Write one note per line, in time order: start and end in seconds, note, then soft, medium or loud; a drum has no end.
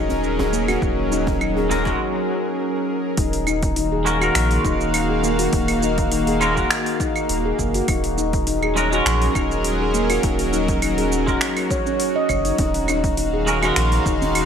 0.00 0.77 D#1 medium
0.00 3.13 F#3 medium
0.00 3.13 C#4 medium
0.00 3.13 G#4 medium
0.00 3.13 A#4 medium
0.09 djembe bass medium
0.09 shaker soft
0.24 shaker soft
0.39 0.52 G#4 medium
0.39 djembe slap medium
0.39 djembe bass medium
0.53 0.68 A#3 loud
0.53 shaker medium
0.68 0.76 F#4 medium
0.68 djembe tone medium
0.68 claves medium
0.68 shaker soft
0.82 1.95 D#1 loud
0.82 0.97 D#4 medium
0.82 kick loud
0.82 shaker soft
1.11 1.21 D#4 medium
1.11 djembe slap soft
1.11 shaker medium
1.27 kick medium
1.27 djembe tone medium
1.27 shaker soft
1.41 1.50 D#4 medium
1.41 claves medium
1.41 shaker soft
1.57 1.85 G#4 medium
1.57 djembe tone medium
1.69 1.83 G#3 medium
1.69 1.84 C#4 medium
1.69 1.84 F#4 medium
1.69 1.84 A#4 medium
1.69 djembe bass medium
1.69 shaker medium
1.85 1.99 G#3 medium
1.85 2.00 C#4 medium
1.85 1.94 F#4 medium
1.85 2.00 F#4 medium
1.85 2.00 A#4 medium
1.85 kick medium
1.85 djembe slap medium
1.85 djembe tone medium
1.85 shaker soft
3.17 4.30 D#1 loud
3.17 7.84 D#3 medium
3.17 7.84 A#3 medium
3.17 3.33 D#4 medium
3.17 7.84 F#4 loud
3.17 7.84 F5 medium
3.17 kick loud
3.17 open hi-hat medium
3.17 shaker soft
3.33 open hi-hat soft
3.47 3.56 D#4 medium
3.47 claves medium
3.47 shaker medium
3.63 kick loud
3.63 open hi-hat soft
3.63 shaker soft
3.76 3.85 D#4 medium
3.76 open hi-hat medium
3.76 shaker soft
3.92 4.20 G#4 medium
4.05 4.17 G#3 medium
4.05 4.18 C#4 medium
4.05 4.18 F#4 medium
4.05 4.18 A#4 medium
4.05 shaker medium
4.20 6.37 G#3 medium
4.20 6.37 C#4 medium
4.20 4.29 F#4 medium
4.20 6.38 F#4 medium
4.20 6.39 A#4 medium
4.20 claves medium
4.20 shaker soft
4.35 4.58 A#1 medium
4.35 finger snap medium
4.35 open hi-hat medium
4.35 shaker soft
4.51 open hi-hat soft
4.65 5.48 D#1 medium
4.65 4.74 D#4 loud
4.65 kick loud
4.65 shaker medium
4.81 shaker soft
4.94 open hi-hat medium
4.94 claves medium
4.94 shaker soft
5.10 5.22 G#4 medium
5.23 5.38 A#3 loud
5.23 shaker medium
5.39 5.47 F#4 medium
5.39 open hi-hat soft
5.39 shaker soft
5.53 6.65 D#1 loud
5.53 5.68 D#4 medium
5.53 kick loud
5.53 open hi-hat medium
5.53 shaker soft
5.68 open hi-hat soft
5.68 claves medium
5.82 5.91 D#4 loud
5.82 shaker medium
5.98 kick loud
5.98 open hi-hat soft
5.98 shaker soft
6.12 6.21 D#4 medium
6.12 open hi-hat medium
6.12 shaker soft
6.27 6.55 G#4 medium
6.27 open hi-hat soft
6.40 6.54 G#3 medium
6.40 6.54 C#4 medium
6.40 6.55 F#4 medium
6.40 6.55 A#4 medium
6.40 claves medium
6.40 shaker medium
6.56 6.73 G#3 medium
6.56 6.73 C#4 medium
6.56 6.65 F#4 medium
6.56 6.73 F#4 medium
6.56 6.74 A#4 medium
6.56 kick medium
6.56 shaker soft
6.71 finger snap medium
6.71 open hi-hat medium
6.71 shaker soft
6.86 open hi-hat soft
7.00 7.09 D#4 loud
7.00 kick loud
7.00 shaker medium
7.16 claves medium
7.16 shaker soft
7.29 7.52 D#1 medium
7.29 open hi-hat medium
7.29 shaker soft
7.45 7.58 G#4 medium
7.59 7.82 F#1 medium
7.59 7.74 A#3 loud
7.59 kick medium
7.59 shaker medium
7.74 7.82 F#4 medium
7.74 open hi-hat soft
7.74 shaker soft
7.88 9.01 D#1 loud
7.88 12.55 F#3 medium
7.88 12.55 C#4 medium
7.88 8.03 D#4 medium
7.88 10.21 G#4 medium
7.88 12.55 A#4 medium
7.88 kick loud
7.88 open hi-hat medium
7.88 claves medium
7.88 shaker soft
8.04 open hi-hat soft
8.18 8.27 D#4 loud
8.18 shaker medium
8.33 kick loud
8.33 open hi-hat soft
8.33 shaker soft
8.47 8.56 D#4 medium
8.47 open hi-hat medium
8.47 shaker soft
8.63 8.91 G#4 medium
8.63 claves medium
8.76 8.88 G#3 medium
8.76 8.88 C#4 medium
8.76 8.89 F#4 medium
8.76 8.89 A#4 medium
8.76 shaker medium
8.90 11.08 G#3 medium
8.90 11.08 C#4 medium
8.90 9.00 F#4 medium
8.90 11.09 F#4 medium
8.90 shaker soft
8.94 11.10 A#4 medium
9.06 9.29 A#1 loud
9.06 finger snap medium
9.06 open hi-hat medium
9.06 shaker soft
9.22 open hi-hat soft
9.35 10.18 D#1 medium
9.35 9.44 D#4 loud
9.35 kick loud
9.35 claves medium
9.35 shaker medium
9.51 shaker soft
9.64 open hi-hat medium
9.64 shaker soft
9.80 9.93 G#4 medium
9.94 10.09 A#3 loud
9.94 shaker medium
10.10 10.18 F#4 medium
10.10 open hi-hat soft
10.10 claves medium
10.10 shaker soft
10.23 11.36 D#1 loud
10.23 10.38 D#4 medium
10.23 14.45 F#4 medium
10.23 kick loud
10.23 open hi-hat medium
10.23 shaker soft
10.39 open hi-hat soft
10.53 10.62 D#4 loud
10.53 shaker medium
10.68 kick loud
10.68 open hi-hat soft
10.68 shaker soft
10.82 10.91 D#4 medium
10.82 open hi-hat medium
10.82 claves medium
10.82 shaker soft
10.98 11.26 G#4 medium
10.98 open hi-hat soft
11.12 shaker medium
11.27 11.43 G#3 medium
11.27 11.44 C#4 medium
11.27 11.35 F#4 medium
11.27 11.44 F#4 medium
11.27 11.44 A#4 medium
11.27 kick medium
11.27 shaker soft
11.41 finger snap medium
11.41 open hi-hat medium
11.41 shaker soft
11.57 open hi-hat soft
11.57 claves medium
11.71 11.85 C#5 medium
11.71 kick loud
11.71 shaker medium
11.86 11.99 C#4 loud
11.86 shaker soft
12.00 open hi-hat medium
12.00 shaker soft
12.16 12.23 D#5 loud
12.29 12.52 F#1 medium
12.29 12.44 C#5 medium
12.29 kick medium
12.29 claves medium
12.29 shaker medium
12.45 12.58 D#4 medium
12.45 open hi-hat soft
12.45 shaker soft
12.58 13.71 D#1 loud
12.58 14.45 D#3 medium
12.58 14.45 A#3 medium
12.58 12.74 D#4 medium
12.58 14.45 F5 medium
12.58 kick loud
12.58 open hi-hat medium
12.58 djembe tone medium
12.58 shaker soft
12.74 open hi-hat soft
12.88 12.97 D#4 medium
12.88 djembe slap medium
12.88 claves medium
12.88 shaker medium
13.04 kick loud
13.04 open hi-hat soft
13.04 shaker soft
13.17 13.27 D#4 medium
13.17 open hi-hat medium
13.17 shaker soft
13.34 13.61 G#4 medium
13.46 13.59 G#3 medium
13.46 13.59 C#4 medium
13.46 13.59 F#4 medium
13.46 13.60 A#4 medium
13.46 shaker medium
13.61 14.45 G#3 medium
13.61 14.45 C#4 medium
13.61 13.71 F#4 medium
13.61 14.45 F#4 medium
13.61 14.45 A#4 medium
13.61 djembe slap medium
13.61 djembe tone soft
13.61 claves medium
13.61 shaker soft
13.76 13.99 A#1 medium
13.76 finger snap medium
13.76 open hi-hat medium
13.76 shaker soft
13.92 open hi-hat soft
13.92 djembe slap soft
13.92 djembe tone medium
14.06 14.45 D#1 medium
14.06 14.15 D#4 loud
14.06 kick loud
14.06 shaker medium
14.22 djembe bass medium
14.22 shaker soft
14.35 open hi-hat medium
14.35 claves medium
14.35 shaker soft